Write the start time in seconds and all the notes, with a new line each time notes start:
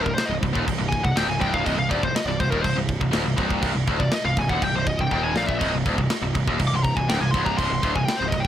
0.02 C1 C2 A#4, kick
0.15 C5, muted distorted electric guitar stroke, muted picked electric bass stroke, snare, crash
0.26 C1 D#5
0.30 C2
0.42 C1 C2, kick, crash
0.53 D#1 D#2, kick
0.66 C1 C2, kick, crash
0.78 C1 C2
0.89 G#5, kick
0.93 crash
1.04 C1 C2 F#5, kick
1.15 D1 D2 G5, snare, crash
1.27 C1 C2 G#5
1.40 C1 C2 G5, kick, crash
1.53 F5, kick
1.64 C1 C2 D#5, kick, crash
1.76 C1 C2 F5
1.89 D1 D2 D5, kick, crash
2.03 C1 C2 C5, kick
2.13 D#5, muted picked electric bass stroke, muted distorted electric guitar stroke, snare, crash
2.26 C1 C2 D5
2.40 C1 C2 C5, kick, crash
2.51 D#1 D#2 A#4, kick
2.62 C1 C2 C5, kick, crash
2.76 C1 C2
2.89 kick, crash
3.00 C1 C2, kick
3.11 D1 D2, snare, crash
3.25 C1 C2
3.37 C1 C2, kick, crash
3.50 kick
3.61 C1 C2, kick, crash
3.74 C1 C2
3.87 D1 D2, kick, crash
4.00 C1 C2 D5, kick
4.12 D#5, muted picked electric bass stroke, muted distorted electric guitar stroke, snare, crash
4.25 C1 C2 F5
4.36 C1 C2 G#5, kick, crash
4.49 D#1 D#2 F#5, kick
4.62 C1 C2 G5, kick, crash
4.74 C1 C2 C5
4.87 D#5, kick, crash
4.99 C1 C2 G5, kick
5.11 D#1 D#2 G5, kick
5.23 G#5
5.35 A#1 A#2 F5, snare
5.47 E5, kick
5.59 C1 C2 D#5, kick, crash
5.73 C1 C2
5.86 D1 D2, kick, crash
5.98 C1 C2, kick
6.10 muted picked electric bass stroke, muted distorted electric guitar stroke, snare, crash
6.22 C1 C2
6.35 C1 C2, kick, crash
6.47 D#1 D#2, kick
6.59 C1 C2, kick, crash
6.67 C1 D6
6.74 C2 C6
6.83 A#5, kick, crash
6.96 C1 C2 G#5, kick
7.09 D1 D2 G5, snare, crash
7.21 C1 C2 G#5
7.31 C1 C2 C6, kick, crash
7.46 A#5, kick
7.58 C1 C2 C6, kick, crash
7.70 C1 C2
7.83 D1 D2, kick, crash
7.96 C1 C2 G#5, kick
8.06 G5, muted picked electric bass stroke, muted distorted electric guitar stroke, snare, crash
8.17 C5
8.21 C1 C2
8.28 D#5
8.32 C1 C2, kick, crash
8.40 G5